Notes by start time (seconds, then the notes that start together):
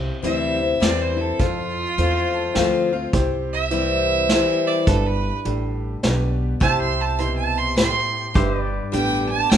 Already playing: C3 E4 G4 C5
0.22 D2 E3 G3 C4 E4 G4 C5 E5, closed hi-hat
0.60 C4 E4
0.80 E2 E3 G3 C4 E4 G4 C5 D5, snare, closed hi-hat
1.02 C5
1.17 C4 E4 A4
1.39 F2 F4 A4 C5, kick, closed hi-hat
1.98 E2 A3 C4 F4 A4 C5, closed hi-hat
2.34 A5
2.54 D2 F3 A3 C4 F4 A4 C5 G5, snare, closed hi-hat
2.92 C4 F4 F5
3.13 C2 C3 E4 G4 C5, kick, closed hi-hat
3.53 E5
3.71 E3 G3 C4 E4 G4 C5, closed hi-hat
4.29 E3 G3 C4 E4 G4 C5, snare, closed hi-hat
4.67 D5
4.87 G1 G2 D4 G4 A4 B4, kick, closed hi-hat
5.06 B4
5.45 A1 A2 D4 G4 A4, closed hi-hat
6.03 B1 B2 D4 G4 B4 D5, snare, closed hi-hat
6.60 C2 C3 E4 G4 C5 E5 A5, kick, closed hi-hat
6.82 C6
7.01 A5
7.19 B2 E4 G4 C5 C6, closed hi-hat
7.36 A5
7.58 C6
7.76 A2 E4 G4 C5 C6, snare, closed hi-hat
8.34 G1 G2 D4 G4 B4 C5 E5, kick, closed hi-hat
8.56 B4
8.63 D5
8.92 A1 D3 G3 B3 D4 G4 B4 G5, closed hi-hat
9.28 B3 G4 A5
9.50 G1 D3 G3 B3 D4 G4 B4 G5, snare, closed hi-hat